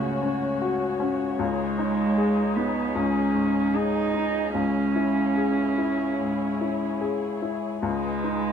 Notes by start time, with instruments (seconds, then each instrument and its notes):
Already playing: upright piano C#2 C#3 C#4 F#4, cello A3, string section C#4 F#4 C#5
0.22 upright piano C#4
0.62 upright piano F#4
1.00 upright piano C#4
1.39 upright piano C#2, cello G#3, string section D#4 G#4
1.79 upright piano D#4
2.18 upright piano G#4
2.56 cello B3, upright piano D#4
2.95 upright piano C#2, cello C#4
3.35 upright piano G#2
3.74 cello D#4, upright piano G#4
4.14 upright piano D#4
4.54 upright piano C#2, cello C#4, string section E4 C#5
4.96 upright piano E4
5.37 upright piano G#4
5.78 upright piano E4
6.19 upright piano G#2
6.61 upright piano E4
7.01 upright piano G#4
7.42 upright piano E4
7.83 upright piano C#2, cello G#3, string section D#4 G#4 B4
8.24 upright piano D#4